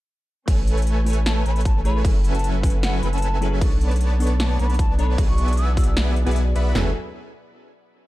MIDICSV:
0, 0, Header, 1, 7, 480
1, 0, Start_track
1, 0, Key_signature, 3, "minor"
1, 0, Tempo, 392157
1, 584, Time_signature, 4, 2, 24, 8
1, 9878, End_track
2, 0, Start_track
2, 0, Title_t, "Flute"
2, 0, Program_c, 0, 73
2, 1545, Note_on_c, 0, 81, 91
2, 1624, Note_off_c, 0, 81, 0
2, 1670, Note_on_c, 0, 81, 75
2, 1743, Note_off_c, 0, 81, 0
2, 1784, Note_on_c, 0, 83, 97
2, 1966, Note_off_c, 0, 83, 0
2, 2024, Note_on_c, 0, 81, 96
2, 2206, Note_off_c, 0, 81, 0
2, 2265, Note_on_c, 0, 83, 95
2, 2446, Note_off_c, 0, 83, 0
2, 2869, Note_on_c, 0, 81, 95
2, 3046, Note_off_c, 0, 81, 0
2, 3463, Note_on_c, 0, 78, 97
2, 3645, Note_off_c, 0, 78, 0
2, 3702, Note_on_c, 0, 83, 97
2, 3802, Note_off_c, 0, 83, 0
2, 3826, Note_on_c, 0, 81, 96
2, 4307, Note_off_c, 0, 81, 0
2, 5386, Note_on_c, 0, 81, 88
2, 5464, Note_off_c, 0, 81, 0
2, 5509, Note_on_c, 0, 81, 80
2, 5583, Note_off_c, 0, 81, 0
2, 5625, Note_on_c, 0, 83, 101
2, 5807, Note_off_c, 0, 83, 0
2, 5865, Note_on_c, 0, 81, 98
2, 6046, Note_off_c, 0, 81, 0
2, 6106, Note_on_c, 0, 83, 92
2, 6287, Note_off_c, 0, 83, 0
2, 6471, Note_on_c, 0, 85, 97
2, 6802, Note_off_c, 0, 85, 0
2, 6829, Note_on_c, 0, 88, 95
2, 7008, Note_off_c, 0, 88, 0
2, 7067, Note_on_c, 0, 88, 93
2, 7145, Note_off_c, 0, 88, 0
2, 7192, Note_on_c, 0, 88, 82
2, 7264, Note_off_c, 0, 88, 0
2, 9878, End_track
3, 0, Start_track
3, 0, Title_t, "Analog polysynth"
3, 0, Program_c, 1, 90
3, 582, Note_on_c, 1, 71, 82
3, 583, Note_on_c, 1, 57, 89
3, 583, Note_on_c, 1, 69, 80
3, 583, Note_on_c, 1, 73, 77
3, 583, Note_on_c, 1, 80, 93
3, 1755, Note_off_c, 1, 57, 0
3, 1755, Note_off_c, 1, 69, 0
3, 1755, Note_off_c, 1, 71, 0
3, 1756, Note_off_c, 1, 73, 0
3, 1756, Note_off_c, 1, 80, 0
3, 1785, Note_on_c, 1, 57, 85
3, 1785, Note_on_c, 1, 73, 74
3, 1785, Note_on_c, 1, 80, 91
3, 1786, Note_on_c, 1, 69, 75
3, 1786, Note_on_c, 1, 71, 76
3, 2476, Note_off_c, 1, 57, 0
3, 2476, Note_off_c, 1, 80, 0
3, 2477, Note_off_c, 1, 69, 0
3, 2477, Note_off_c, 1, 71, 0
3, 2477, Note_off_c, 1, 73, 0
3, 2505, Note_on_c, 1, 76, 80
3, 2505, Note_on_c, 1, 80, 97
3, 2506, Note_on_c, 1, 61, 80
3, 2506, Note_on_c, 1, 69, 81
3, 2506, Note_on_c, 1, 71, 82
3, 2507, Note_on_c, 1, 54, 91
3, 3677, Note_off_c, 1, 54, 0
3, 3677, Note_off_c, 1, 61, 0
3, 3677, Note_off_c, 1, 69, 0
3, 3677, Note_off_c, 1, 71, 0
3, 3677, Note_off_c, 1, 76, 0
3, 3677, Note_off_c, 1, 80, 0
3, 3704, Note_on_c, 1, 54, 78
3, 3704, Note_on_c, 1, 61, 76
3, 3704, Note_on_c, 1, 69, 76
3, 3704, Note_on_c, 1, 76, 76
3, 3704, Note_on_c, 1, 80, 90
3, 3705, Note_on_c, 1, 71, 74
3, 4396, Note_off_c, 1, 54, 0
3, 4396, Note_off_c, 1, 61, 0
3, 4396, Note_off_c, 1, 69, 0
3, 4396, Note_off_c, 1, 71, 0
3, 4396, Note_off_c, 1, 76, 0
3, 4396, Note_off_c, 1, 80, 0
3, 4424, Note_on_c, 1, 71, 80
3, 4425, Note_on_c, 1, 59, 86
3, 4425, Note_on_c, 1, 73, 80
3, 4425, Note_on_c, 1, 74, 81
3, 4425, Note_on_c, 1, 81, 99
3, 5596, Note_off_c, 1, 71, 0
3, 5596, Note_off_c, 1, 81, 0
3, 5597, Note_off_c, 1, 59, 0
3, 5597, Note_off_c, 1, 73, 0
3, 5597, Note_off_c, 1, 74, 0
3, 5625, Note_on_c, 1, 59, 84
3, 5625, Note_on_c, 1, 71, 75
3, 5625, Note_on_c, 1, 73, 74
3, 5625, Note_on_c, 1, 74, 77
3, 5625, Note_on_c, 1, 81, 93
3, 6316, Note_off_c, 1, 71, 0
3, 6316, Note_off_c, 1, 73, 0
3, 6317, Note_off_c, 1, 59, 0
3, 6317, Note_off_c, 1, 74, 0
3, 6317, Note_off_c, 1, 81, 0
3, 6345, Note_on_c, 1, 76, 81
3, 6345, Note_on_c, 1, 80, 97
3, 6346, Note_on_c, 1, 74, 79
3, 6346, Note_on_c, 1, 78, 82
3, 6347, Note_on_c, 1, 59, 86
3, 6347, Note_on_c, 1, 71, 81
3, 7517, Note_off_c, 1, 59, 0
3, 7517, Note_off_c, 1, 71, 0
3, 7517, Note_off_c, 1, 74, 0
3, 7517, Note_off_c, 1, 76, 0
3, 7517, Note_off_c, 1, 78, 0
3, 7517, Note_off_c, 1, 80, 0
3, 7668, Note_on_c, 1, 71, 87
3, 7668, Note_on_c, 1, 78, 87
3, 7668, Note_on_c, 1, 80, 107
3, 7669, Note_on_c, 1, 59, 91
3, 7669, Note_on_c, 1, 76, 88
3, 7670, Note_on_c, 1, 74, 84
3, 7831, Note_off_c, 1, 59, 0
3, 7831, Note_off_c, 1, 71, 0
3, 7831, Note_off_c, 1, 76, 0
3, 7831, Note_off_c, 1, 78, 0
3, 7831, Note_off_c, 1, 80, 0
3, 7832, Note_off_c, 1, 74, 0
3, 8024, Note_on_c, 1, 78, 75
3, 8025, Note_on_c, 1, 59, 79
3, 8025, Note_on_c, 1, 71, 73
3, 8025, Note_on_c, 1, 74, 73
3, 8025, Note_on_c, 1, 76, 71
3, 8025, Note_on_c, 1, 83, 86
3, 8236, Note_off_c, 1, 71, 0
3, 8236, Note_off_c, 1, 78, 0
3, 8237, Note_off_c, 1, 59, 0
3, 8237, Note_off_c, 1, 74, 0
3, 8237, Note_off_c, 1, 76, 0
3, 8237, Note_off_c, 1, 83, 0
3, 8266, Note_on_c, 1, 61, 81
3, 8266, Note_on_c, 1, 69, 80
3, 8266, Note_on_c, 1, 76, 82
3, 8266, Note_on_c, 1, 80, 99
3, 8267, Note_on_c, 1, 54, 91
3, 8267, Note_on_c, 1, 71, 79
3, 8445, Note_off_c, 1, 54, 0
3, 8445, Note_off_c, 1, 61, 0
3, 8445, Note_off_c, 1, 69, 0
3, 8445, Note_off_c, 1, 71, 0
3, 8445, Note_off_c, 1, 76, 0
3, 8445, Note_off_c, 1, 80, 0
3, 9878, End_track
4, 0, Start_track
4, 0, Title_t, "Synth keys"
4, 0, Program_c, 2, 88
4, 559, Note_on_c, 2, 57, 79
4, 573, Note_on_c, 2, 64, 70
4, 585, Note_on_c, 2, 80, 73
4, 596, Note_on_c, 2, 71, 74
4, 609, Note_on_c, 2, 73, 88
4, 794, Control_c, 2, 64, 127
4, 1264, Note_off_c, 2, 57, 0
4, 1270, Note_off_c, 2, 64, 0
4, 1277, Note_off_c, 2, 80, 0
4, 1281, Note_on_c, 2, 57, 81
4, 1282, Note_off_c, 2, 71, 0
4, 1288, Note_off_c, 2, 73, 0
4, 1294, Note_on_c, 2, 64, 74
4, 1305, Note_on_c, 2, 80, 77
4, 1318, Note_on_c, 2, 71, 73
4, 1330, Note_on_c, 2, 73, 88
4, 2225, Note_off_c, 2, 57, 0
4, 2231, Note_off_c, 2, 64, 0
4, 2237, Note_off_c, 2, 80, 0
4, 2243, Note_off_c, 2, 71, 0
4, 2249, Note_off_c, 2, 73, 0
4, 2253, Note_on_c, 2, 57, 94
4, 2260, Note_on_c, 2, 64, 88
4, 2266, Note_on_c, 2, 68, 89
4, 2271, Note_on_c, 2, 71, 89
4, 2278, Note_on_c, 2, 73, 110
4, 2470, Note_off_c, 2, 57, 0
4, 2474, Note_off_c, 2, 64, 0
4, 2477, Note_off_c, 2, 68, 0
4, 2480, Note_off_c, 2, 71, 0
4, 2480, Note_on_c, 2, 54, 80
4, 2483, Note_off_c, 2, 73, 0
4, 2491, Note_on_c, 2, 61, 74
4, 2501, Note_on_c, 2, 64, 76
4, 2511, Note_on_c, 2, 80, 74
4, 2519, Control_c, 2, 64, 0
4, 2521, Note_on_c, 2, 69, 75
4, 2531, Note_on_c, 2, 71, 88
4, 2736, Control_c, 2, 64, 127
4, 3184, Note_off_c, 2, 54, 0
4, 3190, Note_off_c, 2, 61, 0
4, 3195, Note_off_c, 2, 64, 0
4, 3200, Note_off_c, 2, 80, 0
4, 3201, Note_on_c, 2, 54, 84
4, 3204, Note_off_c, 2, 69, 0
4, 3209, Note_off_c, 2, 71, 0
4, 3211, Note_on_c, 2, 61, 77
4, 3221, Note_on_c, 2, 64, 77
4, 3230, Note_on_c, 2, 80, 75
4, 3240, Note_on_c, 2, 69, 75
4, 3250, Note_on_c, 2, 71, 93
4, 4144, Note_off_c, 2, 54, 0
4, 4149, Note_off_c, 2, 61, 0
4, 4154, Note_off_c, 2, 64, 0
4, 4159, Note_off_c, 2, 80, 0
4, 4164, Note_off_c, 2, 69, 0
4, 4169, Note_off_c, 2, 71, 0
4, 4173, Note_on_c, 2, 54, 100
4, 4178, Note_on_c, 2, 61, 93
4, 4182, Note_on_c, 2, 64, 91
4, 4188, Note_on_c, 2, 68, 90
4, 4193, Note_on_c, 2, 69, 90
4, 4198, Note_on_c, 2, 71, 107
4, 4390, Note_off_c, 2, 54, 0
4, 4393, Note_off_c, 2, 61, 0
4, 4395, Note_off_c, 2, 64, 0
4, 4398, Note_off_c, 2, 68, 0
4, 4400, Note_on_c, 2, 47, 80
4, 4401, Note_off_c, 2, 69, 0
4, 4403, Note_off_c, 2, 71, 0
4, 4413, Note_on_c, 2, 59, 74
4, 4425, Note_on_c, 2, 62, 73
4, 4436, Control_c, 2, 64, 0
4, 4438, Note_on_c, 2, 69, 72
4, 4450, Note_on_c, 2, 85, 88
4, 4651, Control_c, 2, 64, 127
4, 5104, Note_off_c, 2, 47, 0
4, 5111, Note_off_c, 2, 59, 0
4, 5117, Note_off_c, 2, 62, 0
4, 5120, Note_on_c, 2, 47, 85
4, 5123, Note_off_c, 2, 69, 0
4, 5129, Note_off_c, 2, 85, 0
4, 5133, Note_on_c, 2, 59, 76
4, 5145, Note_on_c, 2, 62, 78
4, 5157, Note_on_c, 2, 69, 79
4, 5168, Note_on_c, 2, 85, 91
4, 6064, Note_off_c, 2, 47, 0
4, 6070, Note_off_c, 2, 59, 0
4, 6077, Note_off_c, 2, 62, 0
4, 6083, Note_off_c, 2, 69, 0
4, 6088, Note_off_c, 2, 85, 0
4, 6089, Note_on_c, 2, 47, 98
4, 6095, Note_on_c, 2, 59, 87
4, 6101, Note_on_c, 2, 62, 93
4, 6108, Note_on_c, 2, 69, 90
4, 6113, Note_on_c, 2, 73, 110
4, 6306, Note_off_c, 2, 47, 0
4, 6312, Note_off_c, 2, 59, 0
4, 6315, Note_off_c, 2, 62, 0
4, 6318, Note_off_c, 2, 69, 0
4, 6321, Note_off_c, 2, 73, 0
4, 6321, Note_on_c, 2, 47, 81
4, 6329, Note_on_c, 2, 59, 74
4, 6339, Note_on_c, 2, 64, 74
4, 6349, Note_on_c, 2, 66, 76
4, 6359, Note_on_c, 2, 68, 76
4, 6360, Control_c, 2, 64, 0
4, 6369, Note_on_c, 2, 74, 89
4, 6606, Control_c, 2, 64, 127
4, 7024, Note_off_c, 2, 47, 0
4, 7029, Note_off_c, 2, 59, 0
4, 7034, Note_off_c, 2, 64, 0
4, 7038, Note_off_c, 2, 66, 0
4, 7039, Note_on_c, 2, 47, 86
4, 7043, Note_off_c, 2, 68, 0
4, 7049, Note_off_c, 2, 74, 0
4, 7049, Note_on_c, 2, 59, 77
4, 7058, Note_on_c, 2, 64, 77
4, 7068, Note_on_c, 2, 66, 77
4, 7078, Note_on_c, 2, 68, 77
4, 7088, Note_on_c, 2, 74, 93
4, 7627, Note_off_c, 2, 47, 0
4, 7636, Note_off_c, 2, 59, 0
4, 7640, Note_off_c, 2, 64, 0
4, 7642, Note_on_c, 2, 47, 95
4, 7645, Note_off_c, 2, 66, 0
4, 7650, Note_off_c, 2, 68, 0
4, 7651, Note_on_c, 2, 59, 88
4, 7655, Note_off_c, 2, 74, 0
4, 7662, Note_on_c, 2, 64, 86
4, 7671, Note_on_c, 2, 66, 87
4, 7680, Note_on_c, 2, 68, 87
4, 7691, Note_on_c, 2, 74, 107
4, 8223, Note_off_c, 2, 47, 0
4, 8227, Note_on_c, 2, 54, 89
4, 8228, Note_off_c, 2, 59, 0
4, 8230, Note_off_c, 2, 64, 0
4, 8237, Note_off_c, 2, 66, 0
4, 8242, Note_off_c, 2, 68, 0
4, 8245, Note_on_c, 2, 64, 82
4, 8248, Note_off_c, 2, 74, 0
4, 8263, Note_on_c, 2, 68, 78
4, 8278, Control_c, 2, 64, 0
4, 8283, Note_on_c, 2, 69, 82
4, 8301, Note_on_c, 2, 71, 97
4, 8424, Note_off_c, 2, 54, 0
4, 8434, Note_off_c, 2, 64, 0
4, 8444, Note_off_c, 2, 68, 0
4, 8454, Note_off_c, 2, 69, 0
4, 8464, Note_off_c, 2, 71, 0
4, 9878, End_track
5, 0, Start_track
5, 0, Title_t, "String section"
5, 0, Program_c, 3, 48
5, 582, Note_on_c, 3, 57, 76
5, 582, Note_on_c, 3, 61, 90
5, 2484, Note_off_c, 3, 57, 0
5, 2484, Note_off_c, 3, 61, 0
5, 2504, Note_on_c, 3, 57, 76
5, 2504, Note_on_c, 3, 71, 86
5, 2504, Note_on_c, 3, 78, 74
5, 2505, Note_on_c, 3, 54, 83
5, 2506, Note_on_c, 3, 64, 75
5, 4405, Note_off_c, 3, 54, 0
5, 4405, Note_off_c, 3, 57, 0
5, 4405, Note_off_c, 3, 71, 0
5, 4405, Note_off_c, 3, 78, 0
5, 4406, Note_off_c, 3, 64, 0
5, 4423, Note_on_c, 3, 62, 95
5, 4425, Note_on_c, 3, 57, 83
5, 4425, Note_on_c, 3, 59, 76
5, 6325, Note_off_c, 3, 57, 0
5, 6325, Note_off_c, 3, 59, 0
5, 6345, Note_on_c, 3, 56, 74
5, 6346, Note_on_c, 3, 52, 83
5, 8225, Note_off_c, 3, 62, 0
5, 8245, Note_off_c, 3, 52, 0
5, 8245, Note_off_c, 3, 56, 0
5, 8268, Note_on_c, 3, 54, 76
5, 8268, Note_on_c, 3, 68, 69
5, 8268, Note_on_c, 3, 69, 66
5, 8269, Note_on_c, 3, 64, 67
5, 8270, Note_on_c, 3, 71, 80
5, 8489, Note_off_c, 3, 54, 0
5, 8489, Note_off_c, 3, 68, 0
5, 8489, Note_off_c, 3, 69, 0
5, 8490, Note_off_c, 3, 64, 0
5, 8490, Note_off_c, 3, 71, 0
5, 9878, End_track
6, 0, Start_track
6, 0, Title_t, "Sub bass"
6, 0, Program_c, 4, 38
6, 583, Note_on_c, 4, 33, 97
6, 1760, Note_off_c, 4, 33, 0
6, 1783, Note_on_c, 4, 33, 97
6, 2505, Note_on_c, 4, 30, 97
6, 2523, Note_off_c, 4, 33, 0
6, 3681, Note_off_c, 4, 30, 0
6, 3704, Note_on_c, 4, 30, 100
6, 4425, Note_on_c, 4, 35, 95
6, 4443, Note_off_c, 4, 30, 0
6, 5601, Note_off_c, 4, 35, 0
6, 5623, Note_on_c, 4, 35, 99
6, 6320, Note_off_c, 4, 35, 0
6, 6344, Note_on_c, 4, 35, 96
6, 7643, Note_off_c, 4, 35, 0
6, 7667, Note_on_c, 4, 35, 101
6, 8000, Note_off_c, 4, 35, 0
6, 8023, Note_on_c, 4, 35, 99
6, 8240, Note_off_c, 4, 35, 0
6, 8262, Note_on_c, 4, 30, 92
6, 8486, Note_off_c, 4, 30, 0
6, 9878, End_track
7, 0, Start_track
7, 0, Title_t, "Drums"
7, 583, Note_on_c, 9, 36, 117
7, 585, Note_on_c, 9, 42, 81
7, 585, Note_on_c, 9, 49, 49
7, 706, Note_off_c, 9, 36, 0
7, 707, Note_off_c, 9, 42, 0
7, 707, Note_off_c, 9, 49, 0
7, 826, Note_on_c, 9, 42, 71
7, 948, Note_off_c, 9, 42, 0
7, 949, Note_on_c, 9, 42, 56
7, 1005, Note_off_c, 9, 42, 0
7, 1005, Note_on_c, 9, 42, 71
7, 1063, Note_off_c, 9, 42, 0
7, 1063, Note_on_c, 9, 42, 78
7, 1186, Note_off_c, 9, 42, 0
7, 1303, Note_on_c, 9, 46, 100
7, 1345, Note_on_c, 9, 42, 67
7, 1385, Note_off_c, 9, 42, 0
7, 1385, Note_on_c, 9, 42, 89
7, 1426, Note_off_c, 9, 46, 0
7, 1507, Note_off_c, 9, 42, 0
7, 1543, Note_on_c, 9, 38, 116
7, 1543, Note_on_c, 9, 42, 85
7, 1666, Note_off_c, 9, 38, 0
7, 1666, Note_off_c, 9, 42, 0
7, 1785, Note_on_c, 9, 42, 70
7, 1907, Note_off_c, 9, 42, 0
7, 1908, Note_on_c, 9, 42, 53
7, 1966, Note_off_c, 9, 42, 0
7, 1966, Note_on_c, 9, 42, 69
7, 2024, Note_off_c, 9, 42, 0
7, 2024, Note_on_c, 9, 42, 82
7, 2025, Note_on_c, 9, 36, 108
7, 2147, Note_off_c, 9, 36, 0
7, 2147, Note_off_c, 9, 42, 0
7, 2266, Note_on_c, 9, 42, 71
7, 2388, Note_off_c, 9, 42, 0
7, 2505, Note_on_c, 9, 36, 124
7, 2507, Note_on_c, 9, 42, 83
7, 2507, Note_on_c, 9, 49, 47
7, 2627, Note_off_c, 9, 36, 0
7, 2629, Note_off_c, 9, 42, 0
7, 2629, Note_off_c, 9, 49, 0
7, 2747, Note_on_c, 9, 42, 72
7, 2869, Note_off_c, 9, 42, 0
7, 2872, Note_on_c, 9, 42, 53
7, 2929, Note_off_c, 9, 42, 0
7, 2929, Note_on_c, 9, 42, 70
7, 2988, Note_off_c, 9, 42, 0
7, 2988, Note_on_c, 9, 42, 82
7, 3110, Note_off_c, 9, 42, 0
7, 3225, Note_on_c, 9, 36, 114
7, 3227, Note_on_c, 9, 46, 94
7, 3268, Note_on_c, 9, 42, 70
7, 3306, Note_off_c, 9, 42, 0
7, 3306, Note_on_c, 9, 42, 86
7, 3347, Note_off_c, 9, 36, 0
7, 3350, Note_off_c, 9, 46, 0
7, 3429, Note_off_c, 9, 42, 0
7, 3466, Note_on_c, 9, 38, 126
7, 3466, Note_on_c, 9, 42, 84
7, 3589, Note_off_c, 9, 38, 0
7, 3589, Note_off_c, 9, 42, 0
7, 3707, Note_on_c, 9, 42, 67
7, 3829, Note_off_c, 9, 42, 0
7, 3831, Note_on_c, 9, 42, 53
7, 3889, Note_off_c, 9, 42, 0
7, 3889, Note_on_c, 9, 42, 69
7, 3946, Note_off_c, 9, 42, 0
7, 3946, Note_on_c, 9, 42, 85
7, 4068, Note_off_c, 9, 42, 0
7, 4185, Note_on_c, 9, 42, 70
7, 4307, Note_off_c, 9, 42, 0
7, 4424, Note_on_c, 9, 36, 127
7, 4425, Note_on_c, 9, 42, 79
7, 4425, Note_on_c, 9, 49, 44
7, 4547, Note_off_c, 9, 36, 0
7, 4548, Note_off_c, 9, 42, 0
7, 4548, Note_off_c, 9, 49, 0
7, 4666, Note_on_c, 9, 42, 68
7, 4788, Note_off_c, 9, 42, 0
7, 4790, Note_on_c, 9, 42, 52
7, 4846, Note_off_c, 9, 42, 0
7, 4846, Note_on_c, 9, 42, 72
7, 4904, Note_off_c, 9, 42, 0
7, 4904, Note_on_c, 9, 42, 80
7, 5027, Note_off_c, 9, 42, 0
7, 5144, Note_on_c, 9, 46, 90
7, 5186, Note_on_c, 9, 42, 66
7, 5224, Note_off_c, 9, 42, 0
7, 5224, Note_on_c, 9, 42, 83
7, 5267, Note_off_c, 9, 46, 0
7, 5346, Note_off_c, 9, 42, 0
7, 5384, Note_on_c, 9, 38, 126
7, 5384, Note_on_c, 9, 42, 83
7, 5506, Note_off_c, 9, 38, 0
7, 5506, Note_off_c, 9, 42, 0
7, 5624, Note_on_c, 9, 42, 69
7, 5747, Note_off_c, 9, 42, 0
7, 5749, Note_on_c, 9, 42, 51
7, 5806, Note_off_c, 9, 42, 0
7, 5806, Note_on_c, 9, 42, 65
7, 5864, Note_on_c, 9, 36, 114
7, 5865, Note_off_c, 9, 42, 0
7, 5865, Note_on_c, 9, 42, 84
7, 5986, Note_off_c, 9, 36, 0
7, 5987, Note_off_c, 9, 42, 0
7, 6104, Note_on_c, 9, 42, 71
7, 6227, Note_off_c, 9, 42, 0
7, 6344, Note_on_c, 9, 36, 127
7, 6345, Note_on_c, 9, 42, 79
7, 6345, Note_on_c, 9, 49, 45
7, 6466, Note_off_c, 9, 36, 0
7, 6467, Note_off_c, 9, 42, 0
7, 6467, Note_off_c, 9, 49, 0
7, 6584, Note_on_c, 9, 42, 66
7, 6706, Note_off_c, 9, 42, 0
7, 6707, Note_on_c, 9, 42, 51
7, 6765, Note_off_c, 9, 42, 0
7, 6765, Note_on_c, 9, 42, 65
7, 6822, Note_off_c, 9, 42, 0
7, 6822, Note_on_c, 9, 42, 77
7, 6944, Note_off_c, 9, 42, 0
7, 7063, Note_on_c, 9, 36, 111
7, 7063, Note_on_c, 9, 46, 92
7, 7105, Note_on_c, 9, 42, 65
7, 7143, Note_off_c, 9, 42, 0
7, 7143, Note_on_c, 9, 42, 82
7, 7185, Note_off_c, 9, 46, 0
7, 7186, Note_off_c, 9, 36, 0
7, 7266, Note_off_c, 9, 42, 0
7, 7303, Note_on_c, 9, 38, 123
7, 7303, Note_on_c, 9, 42, 78
7, 7426, Note_off_c, 9, 38, 0
7, 7426, Note_off_c, 9, 42, 0
7, 7544, Note_on_c, 9, 42, 68
7, 7666, Note_off_c, 9, 42, 0
7, 7668, Note_on_c, 9, 42, 49
7, 7726, Note_off_c, 9, 42, 0
7, 7726, Note_on_c, 9, 42, 63
7, 7784, Note_off_c, 9, 42, 0
7, 7784, Note_on_c, 9, 42, 82
7, 7906, Note_off_c, 9, 42, 0
7, 8024, Note_on_c, 9, 42, 67
7, 8147, Note_off_c, 9, 42, 0
7, 8263, Note_on_c, 9, 38, 108
7, 8263, Note_on_c, 9, 43, 110
7, 8385, Note_off_c, 9, 38, 0
7, 8385, Note_off_c, 9, 43, 0
7, 9878, End_track
0, 0, End_of_file